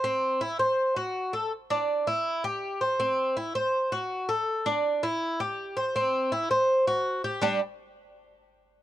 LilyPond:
\new Staff \with { instrumentName = "Cuban tres" } { \time 4/4 \key c \lydian \tempo 4 = 163 c'4 e'8 c''4 fis'4 a'8 | r8 d'4 e'4 g'4 c''8 | c'4 e'8 c''4 fis'4 a'8~ | a'8 d'4 e'4 g'4 c''8 |
c'4 e'8 c''4 fis'4 g'8 | <g d' g'>8 r2. r8 | }